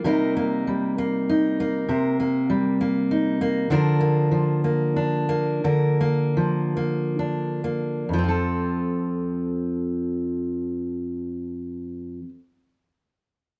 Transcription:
0.04 C3 G3 A#3 D#4 A#4
0.37 A#3
0.67 G3
0.98 A#3
1.29 D#4
1.60 A#3
1.89 C3 A#4
2.20 A#3
2.50 G3
2.81 A#3
3.11 D#4
3.41 A#3
3.70 D3 F3 A#3 D4 A#4
4.01 A#3
4.31 F3
4.64 A#3
4.96 D4
5.29 A#3
5.64 D3 A#4
6.01 A#3
6.37 F3
6.77 A#3
7.19 D4
7.64 A#3
8.09 F2
8.13 F3
8.19 C4
8.24 F4
8.29 A4

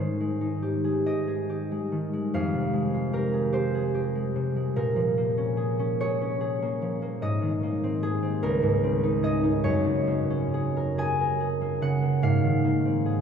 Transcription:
Already playing: G#2 G#3 C5
0.00 D#3
0.20 G#3
0.41 D#4
0.63 G4
0.84 G#4
1.06 G4 D#5
1.28 G#4
1.50 G4
1.72 G#3
1.92 D#3
2.13 G#3
2.34 F2 F5
2.54 C3
2.73 G#3
2.94 F4
3.13 G4 A#4
3.33 G#4
3.53 G4 C5
3.74 G#4
3.95 G4
4.15 G#3
4.36 C3
4.56 G#3
4.76 A#2 A#4
4.96 F3
5.18 A#3
5.38 C#4
5.57 G#4
5.79 C#4
6.01 G#4 C#5
6.22 C#4
6.41 G#4
6.62 A#3
6.82 F3
7.02 A#3
7.22 G#2 D#5
7.42 D#3
7.63 A#3
7.84 C4
8.03 G#4
8.23 C4
8.43 C#2 A#4
8.63 G#2
8.84 C4
9.03 D#4
9.23 G#4 D#5
9.43 D#4
9.64 F#2 C#5
9.84 C#3
10.07 A#3
10.30 C#4
10.54 G#4
10.77 A#4
10.98 G#4 G#5
11.21 A#4
11.40 G#4
11.61 A#3
11.81 C#3 F#5
12.02 A#3
12.22 G#2 F5
12.44 D#3
12.64 A#3
12.85 C4
13.06 G#4

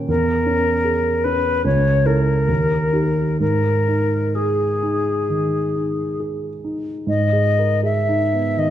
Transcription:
Already playing: A#2 C#4 A#4
0.08 E2 A#4
0.46 C#4
0.85 G#4
1.24 C#4 B4
1.65 C#2 C#5
2.06 E4 A4 A#4
2.48 D#2
2.93 D#4 G4
3.40 G#2 A#4
3.88 D#4
4.35 G#4
4.83 D#4
5.29 D#3
5.75 D#4
6.20 G#4
6.64 D#4
7.07 G#2 D#5
7.33 G#4
7.59 A#4
7.83 G#4 E5
8.09 D#4
8.33 B3
8.57 D#3 D#5

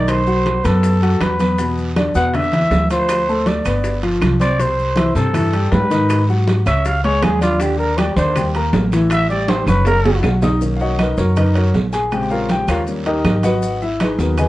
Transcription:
Already playing: B1 D#3 D#4 D5 D#5
0.07 C5, high bongo, high conga, high timbale, long guiro, claves, maracas
0.26 F#3 F#4 F#5, high bongo, high conga, maracas
0.45 high bongo, high conga, high timbale, short guiro, maracas
0.64 F#2 B3 A4 B4 B5, high bongo, high conga, high timbale, short guiro, claves, maracas
0.83 high bongo, long guiro, maracas
1.02 F#3 F#4 F#5, high conga, high timbale, maracas
1.20 E2 B4, high bongo, low bongo, high conga, high timbale, short guiro, claves, maracas
1.40 B3 B4 B5, high bongo, high conga, high timbale, short guiro, maracas
1.59 B2 B3 B4, high bongo, long guiro, maracas
1.78 high conga, maracas
1.96 D3 D4 D5, high bongo, high conga, high timbale, short guiro, claves, maracas
2.15 E2 B2 B3 B4 F#5, high conga, short guiro, maracas
2.34 D3 D4 D5 E5, high bongo, high conga, low conga, high timbale, long guiro, claves, maracas
2.53 E3 E4 E5, high conga, low conga, high timbale, maracas
2.71 D2, high bongo, low bongo, high conga, low timbale, short guiro, maracas
2.90 F3 F4 C5 F5, high conga, high timbale, short guiro, maracas
3.09 high bongo, high conga, high timbale, long guiro, claves, maracas
3.28 A3 A4 A5, high bongo, high conga, maracas
3.46 D5, high bongo, high conga, high timbale, short guiro, maracas
3.65 G1 B3 B4 B5, high bongo, high timbale, short guiro, claves, maracas
3.84 high bongo, high conga, long guiro, maracas
4.03 F3 F4 F5, high conga, high timbale, maracas
4.21 C2, high bongo, low bongo, high conga, high timbale, short guiro, claves, maracas
4.40 C4 C5 D5 C6, high bongo, high conga, high timbale, short guiro, maracas
4.59 C3 C4 C5, high bongo, high conga, long guiro, maracas
4.78 high conga, maracas
4.96 E3 E4 E5, high bongo, high conga, high timbale, short guiro, claves, maracas
5.15 G2 C3 C4 A4 C5, high conga, short guiro, maracas
5.33 E3 E4 E5, high bongo, high conga, low conga, high timbale, long guiro, claves, maracas
5.53 G3 G4 G5, high conga, high timbale, maracas
5.72 G#2 B4, high bongo, low bongo, high conga, low timbale, short guiro, maracas
5.90 D#3 D#4 D#5, high conga, high timbale, short guiro, maracas
6.10 high bongo, high conga, high timbale, long guiro, claves, maracas
6.29 F#3 F#4 F#5, high bongo, high conga, maracas
6.47 high bongo, high conga, high timbale, short guiro, maracas
6.66 C#2 C#4 C#5 E5 C#6, high bongo, high timbale, short guiro, claves, maracas
6.85 F5, high bongo, high conga, long guiro, maracas
7.04 G#3 G#4 C#5 G#5, high conga, high timbale, maracas
7.23 D#2 G#4, high bongo, low bongo, high conga, high timbale, low timbale, short guiro, claves, maracas
7.41 D4 F4 D5 D6, high bongo, high conga, high timbale, short guiro, maracas
7.60 D3 D4 G4 D5, high bongo, long guiro, maracas
7.78 A#4, high conga, maracas
7.97 G3 G4 D5 G5, high bongo, high conga, high timbale, short guiro, claves, maracas
8.16 D#2 D3 D4 C5 D5, high conga, short guiro, maracas
8.35 G3 G4 G5, high bongo, high conga, low conga, high timbale, long guiro, claves, maracas
8.55 A#3 A#4 A#5, high conga, high timbale, maracas
8.73 A1, high bongo, low bongo, high conga, low timbale, short guiro, maracas
8.92 E3 E4 E5, high timbale, short guiro, maracas
9.10 E5, high bongo, high conga, high timbale, long guiro, claves, maracas
9.29 G3 G4 D5 G5, high bongo, high conga, maracas
9.48 C5, high bongo, high conga, high timbale, short guiro, maracas
9.66 F#1 C#4 B4 C#5 C#6, high bongo, high conga, high timbale, short guiro, claves, maracas
9.85 A#4, high bongo, low timbale, long guiro, maracas
10.04 F#3 F#4 F#5, low conga, low timbale, maracas
10.23 B1, high bongo, low bongo, low timbale, short guiro, claves, maracas
10.42 D#4 D#5 D#6, high bongo, low conga, low timbale, short guiro, maracas
10.61 D#3 A#3 C#4, high conga, long guiro, maracas
10.76 F5, maracas
10.81 F#4 C#5 D#5 F#5, high conga
10.99 D#4 A#4 B4 D#5, high conga, high timbale, short guiro, claves, maracas
11.17 F#2 C#4 F#4 A#4 C#5, high conga, short guiro, maracas
11.36 D#4 A#4 B4 D#5, high conga, low conga, high timbale, long guiro, claves, maracas
11.55 C#4 F#4 A#4 C#5, high conga, high timbale, maracas
11.74 A#1, high conga, low timbale, short guiro, maracas
11.93 G#4 G#5, high timbale, short guiro, maracas
12.11 C#3 G#3 C4 G4 G5, high conga, high timbale, long guiro, claves, maracas
12.30 F4 A#4 C#5 F5, high conga, maracas
12.49 G4 G5, high conga, high timbale, short guiro, maracas
12.68 D#2 F4 A#4 C#5 F5, high conga, high timbale, short guiro, claves, maracas
12.87 G3 A#3 C#4, high conga, long guiro, maracas
13.06 D#4 G4 A#4 D#5, high conga, high timbale, maracas
13.24 G#1, high conga, high timbale, low timbale, short guiro, claves, maracas
13.43 F#4 B4 D#5 F#5, high conga, high timbale, short guiro, maracas
13.62 high conga, long guiro, maracas
13.81 E4 E5, high conga, maracas
14.00 D#4 G#4 B4 D#5, high conga, high timbale, short guiro, claves, maracas
14.18 D#2 F#3 B3 A#4, high conga, short guiro, maracas
14.38 G#4 B4 D#5 G#5, high conga, low conga, high timbale, long guiro, claves, maracas

